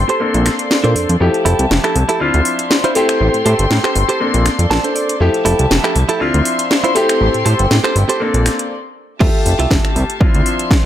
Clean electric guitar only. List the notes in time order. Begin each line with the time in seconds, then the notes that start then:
0.09 G4 A4 C5
0.84 D4 A4 C5
1.45 E4 G4 A4
1.84 E4 G4 A4
2.09 E4 G4 A4
2.84 E4 F4 C5
2.95 G4 A4 C5
3.45 G4 A4 C5
3.84 G4 A4 C5
4.09 G4 A4 C5
4.71 A5
4.84 D4 A4 C5
4.96 D5
5.45 E4 G4 A4
5.84 E4 G4 A4
6.09 E4 G4 A4
6.84 E4 F4 C5
6.95 G4 A4 C5
7.45 G4 A4 C5
7.84 G4 A4 C5
8.09 G4 A4 C5
9.20 F4 G4 A4 E5
9.59 F4 G4 A4 E5
10.21 muted clean electric guitar stroke
10.34 muted clean electric guitar stroke